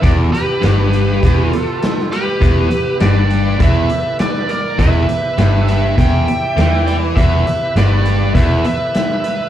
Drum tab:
HH |x-x-x-x-x-x-x-x-|x-x-x-x-x-x-x-x-|x-x-x-x-x-x-x-x-|x-x-x-x-x-x-x-x-|
SD |----o-------oo--|----o-------oo--|----o-------oo--|----o-------o---|
BD |o-------o-------|o-------o-------|o-------o-------|o-------o-------|